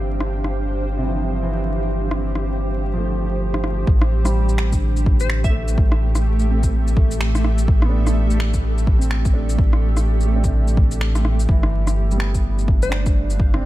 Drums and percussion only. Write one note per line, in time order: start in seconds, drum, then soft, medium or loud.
0.21 cross-stick medium
0.44 cross-stick soft
2.11 cross-stick medium
2.35 cross-stick medium
3.54 cross-stick medium
3.64 cross-stick medium
3.87 kick loud
4.02 cross-stick medium
4.25 cross-stick medium
4.25 shaker medium
4.49 shaker soft
4.58 finger snap loud
4.72 kick medium
4.72 shaker medium
4.97 shaker soft
5.06 kick loud
5.20 shaker medium
5.30 finger snap loud
5.44 kick loud
5.44 shaker soft
5.68 shaker medium
5.78 kick loud
5.92 cross-stick medium
6.15 cross-stick medium
6.15 shaker medium
6.39 shaker soft
6.63 kick medium
6.63 shaker medium
6.88 shaker soft
6.97 kick loud
7.11 shaker medium
7.21 finger snap loud
7.35 cross-stick medium
7.35 shaker soft
7.45 cross-stick medium
7.58 shaker medium
7.68 kick loud
7.82 cross-stick medium
8.07 cross-stick medium
8.07 shaker medium
8.30 shaker soft
8.40 finger snap loud
8.54 kick medium
8.54 shaker medium
8.78 shaker soft
8.87 kick loud
9.02 shaker medium
9.11 finger snap loud
9.25 kick loud
9.25 shaker soft
9.49 shaker medium
9.58 kick loud
9.73 cross-stick medium
9.97 cross-stick soft
9.97 shaker medium
10.21 shaker soft
10.44 kick medium
10.44 shaker medium
10.68 shaker soft
10.77 kick loud
10.91 shaker medium
11.01 finger snap loud
11.15 cross-stick medium
11.15 shaker soft
11.25 cross-stick medium
11.40 shaker medium
11.49 kick loud
11.63 cross-stick medium
11.87 cross-stick medium
11.87 shaker medium
12.11 shaker soft
12.20 finger snap loud
12.35 kick medium
12.35 shaker medium
12.59 shaker soft
12.68 kick loud
12.82 shaker medium
12.92 finger snap loud
13.06 kick loud
13.06 shaker soft
13.30 shaker medium
13.40 kick loud
13.54 cross-stick medium